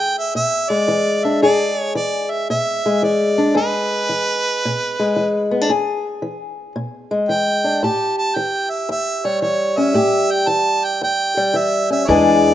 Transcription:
Already playing: E3 G#4 G5
0.18 E5
0.35 B2 E5
0.70 G#3 D5
0.88 E3
1.24 D4 E5
1.42 E2 G#4 D5
1.79 C#5
1.95 E3 D5
2.31 E5
2.50 B2 E5
2.86 G#3
3.03 E3 D5
3.38 D4
3.55 E2 G#4 B4
4.09 E3
4.65 B2
5.00 G#3
5.16 E3
5.51 B3
5.61 D4
5.69 E2 G#4
6.22 E3
6.76 B2
7.11 G#3
7.29 E3 G5
7.64 D4
7.83 A2 G4 A5
8.18 A5
8.36 E3 G5
8.70 E5
8.89 E2 E5
9.25 G3 C#5
9.41 E3 C#5
9.78 C#4 E5
9.94 A2 G4
10.31 G5
10.47 E3 A5
10.84 G5
11.02 E2 G5
11.37 G3
11.54 E3 E5
11.90 C#4 E5
12.05 E2 E3 G#3 C#5 D5
12.10 D4 G#4

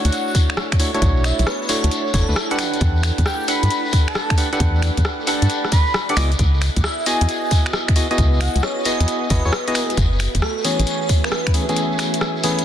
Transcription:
Already playing: A3 D4 E4 F#4 A4 C#5 F#5
0.05 D2, closed hi-hat, shekere
0.12 F#5, closed hi-hat, shekere
0.27 F#5, shekere
0.34 C#5, kick, open hi-hat, shekere
0.50 finger snap
0.57 cross-stick, shekere
0.72 finger snap, kick, closed hi-hat, shekere
0.79 A3 D4 E4 F#4 C#5, open hi-hat, shekere
0.94 A3 D4 E4 F#4 C#5, closed hi-hat, shekere
1.02 B1, kick, closed hi-hat, shekere
1.16 shekere
1.24 E5, finger snap, open hi-hat, shekere
1.39 B1, closed hi-hat, shekere
1.47 B4, cross-stick, shekere
1.62 B4, shekere
1.69 A3 D4 E4 F#4 A4 C#5, open hi-hat, shekere
1.83 D2, closed hi-hat, shekere
1.91 closed hi-hat, shekere
2.07 shekere
2.14 F#1 A3 D4 E4 F#4 A4 C#5, kick, open hi-hat, shekere
2.29 D2 A3 D4 E4 F#4 B4, shekere
2.36 cross-stick, shekere
2.51 D4 G4 A4 B4 F#5, closed hi-hat, shekere
2.59 A3 G4 F#5, finger snap, open hi-hat, shekere
2.73 closed hi-hat, shekere
2.80 E2, kick, closed hi-hat, shekere
2.96 shekere
3.03 finger snap, open hi-hat, shekere
3.18 E2 D5, kick, closed hi-hat, shekere
3.26 G5, cross-stick, shekere
3.40 G5, shekere
3.48 D4 G4 A4 B4 F#5 B5, open hi-hat, shekere
3.63 G2, closed hi-hat, shekere
3.70 B5, closed hi-hat, shekere
3.85 B5, shekere
3.92 kick, open hi-hat, shekere
4.08 A5, finger snap
4.15 A5, cross-stick, shekere
4.30 finger snap, kick, closed hi-hat, shekere
4.38 D4 G4 A4 B4 F#5, open hi-hat, shekere
4.53 D4 G4 A4 B4 F#5, closed hi-hat, shekere
4.60 E2, kick, closed hi-hat, shekere
4.75 shekere
4.82 finger snap, open hi-hat, shekere
4.97 E2, kick, closed hi-hat, shekere
5.05 cross-stick, shekere
5.20 shekere
5.27 D4 G4 A4 B4 F#5 A5, open hi-hat, shekere
5.42 G2, closed hi-hat, shekere
5.50 closed hi-hat, shekere
5.65 cross-stick, shekere
5.72 B5, kick, open hi-hat, shekere
5.86 B5, shekere
5.94 cross-stick, shekere
6.09 D4 G4 A4 B4 F#5 D6, closed hi-hat, shekere
6.17 C#2 B3 E4 F#4 G#4 D#5, finger snap, open hi-hat, shekere
6.32 closed hi-hat, shekere
6.39 C#2, kick, closed hi-hat, shekere
6.54 shekere
6.58 B4, finger snap, open hi-hat, shekere
6.76 C#2, kick, closed hi-hat, shekere
6.84 E5, cross-stick, shekere
6.98 D#5 E5, shekere
7.06 B3 E4 F#4 G#4 D#5 G#5, open hi-hat, shekere
7.21 E2, closed hi-hat, shekere
7.29 G#5, closed hi-hat, shekere
7.44 G#5, shekere
7.51 kick, open hi-hat, shekere
7.66 finger snap, shekere
7.73 cross-stick, shekere
7.88 finger snap, kick, closed hi-hat
7.96 B3 E4 F#4 G#4 D#5, open hi-hat, shekere
8.11 B3 E4 F#4 G#4 D#5, closed hi-hat, shekere
8.18 C#2, kick, closed hi-hat, shekere
8.33 shekere
8.41 F#5, finger snap, open hi-hat, shekere
8.56 C#2, closed hi-hat, shekere
8.63 C#5, cross-stick, shekere
8.78 C#5, shekere
8.85 B3 E4 F#4 G#4 B4 D#5, open hi-hat, shekere
9.00 E2, closed hi-hat, shekere
9.08 closed hi-hat, shekere
9.23 shekere
9.30 G#1 B3 E4 F#4 G#4 B4 D#5, kick, open hi-hat, shekere
9.45 E2 B3 E4 F#4 G#4 C#5, shekere
9.52 cross-stick, shekere
9.67 B3 E4 F#4 G#4 D#5, closed hi-hat, shekere
9.75 finger snap, open hi-hat, shekere
9.90 closed hi-hat, shekere
9.97 F#1 A3 G#4, kick, closed hi-hat, shekere
10.12 E5, shekere
10.19 finger snap, open hi-hat, shekere
10.35 F#1, kick, closed hi-hat, shekere
10.42 A4, cross-stick, shekere
10.57 A4, shekere
10.65 E3 A3 B3 C#4 G#4 C#5, open hi-hat, shekere
10.79 A1, closed hi-hat, shekere
10.87 C#5, closed hi-hat, shekere
11.02 C#5, shekere
11.09 kick, open hi-hat, shekere
11.24 B4, finger snap, shekere
11.32 B4, cross-stick, shekere
11.47 finger snap, kick, closed hi-hat, shekere
11.54 E3 A3 B3 C#4 G#4, open hi-hat, shekere
11.69 E3 A3 B3 C#4 G#4, closed hi-hat, shekere
11.76 closed hi-hat, shekere
11.92 shekere
11.99 finger snap, open hi-hat, shekere
12.13 closed hi-hat, shekere
12.21 cross-stick, shekere
12.36 shekere
12.44 E3 A3 B3 C#4 G#4 B4, open hi-hat, shekere
12.59 closed hi-hat, shekere

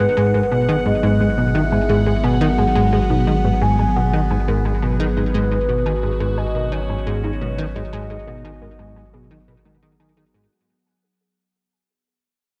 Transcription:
Already playing: G#1 F#3 B3 G#4 B4 F#5
0.00 G#4
0.17 G#2 G#5
0.34 G#2 A#4
0.51 B2 G#5
0.69 D#3 G#5
0.86 G#2 G#4 D#5
1.03 G#2 D#4
1.20 G#2 G#3
1.38 B2 B4
1.55 D#3 F#4 E5
1.72 G#2 G#5
1.89 G#2 G#4
2.06 G#2 G#4
2.24 B2 F#5 G#5
2.41 D#3 A#4
2.58 G#2 G#5
2.75 G#2 G#5
2.93 G#2 G#4
3.10 B2 D#4
3.27 D#3 G#3
3.44 G#2 B4
3.62 G#2 F#4 G#5
3.79 G#2 G#5
3.96 B2 G#4 F#5
4.13 D#3 G#4
4.31 G#2 G#5
4.48 G#2 A#4
4.65 G#2 G#5
4.83 B2 G#5
5.00 D#3 F#4 G#4 B4
5.17 G#2 D#4
5.34 G#2 G#3
5.51 G#2 B4
5.69 B2 F#4
5.86 D#3 G#5
6.03 G#2 G#4
6.20 G#2 G#4
6.38 G#2 D#5 G#5
6.55 B2 A#4
6.72 D#3 C#5 G#5
6.89 G#2 G#5
7.07 G#2 G#4
7.24 G#2 D#4
7.41 B2 G#3
7.58 D#3 B4
7.76 G#2 F#4 D#5
7.93 G#2 G#5
8.10 G#2 G#4
8.27 B2 G#4
8.45 D#3 G#5
8.62 G#2 A#4
8.79 G#2 G#5
8.96 G#2 G#5
9.13 B2 G#4
9.31 D#3 D#4
9.48 B2 G#4
9.65 D#3 G#3
9.82 D#3 G#4
10.00 D#3 G#5
10.17 D#3 G#4
10.34 G#2 G#4

